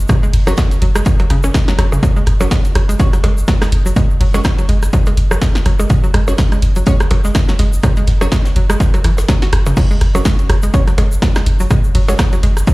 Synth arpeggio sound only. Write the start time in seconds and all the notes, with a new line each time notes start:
0.09 F#3
0.23 G#3
0.47 F#3
0.58 G#3
0.82 F#3
0.96 G#3
1.20 F#3
1.30 C#3
1.44 C#4
1.55 G#3
1.68 F#3
1.79 F#3
1.92 C#3
2.03 F#3
2.17 G#3
2.41 F#3
2.51 G#3
2.75 F#3
2.89 G#3
3.13 F#3
3.24 G#3
3.48 F#3
3.62 G#3
3.86 F#3
3.96 G#3
4.21 F#3
4.34 G#3
4.58 F#3
4.69 G#3
4.93 F#3
5.07 G#3
5.31 F#3
5.42 G#3
5.66 F#3
5.79 G#3
6.04 F#3
6.14 G#3
6.38 F#3
6.52 G#3
6.76 F#3
6.87 G#3
7.11 F#3
7.25 G#3
7.49 F#3
7.59 G#3
7.83 F#3
7.97 G#3
8.21 F#3
8.32 G#3
8.56 F#3
8.70 G#3
8.94 F#3
9.04 E3
9.29 F#3
9.42 F#4
9.66 C#3
9.77 F#3
9.91 G#3
10.15 F#3
10.25 G#3
10.50 F#3
10.63 G#3
10.88 F#3
10.98 G#3
11.22 F#3
11.36 G#3
11.60 F#3
11.71 G#3
11.95 F#3
12.09 G#3
12.33 F#3
12.43 G#3
12.67 F#3